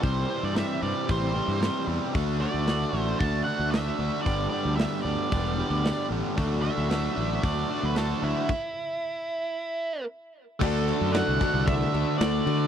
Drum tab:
CC |--------|--------|--------|--------|
HH |o-o-o-o-|o-o-o-o-|o-o-o-o-|o-o-o-o-|
SD |--o---o-|--o---o-|--o---o-|--o---o-|
BD |o---o---|o---o---|o---o---|o---o---|

CC |x-------|xxxxxxxx|
HH |--------|--------|
SD |--------|--oo--o-|
BD |o-------|o--oo---|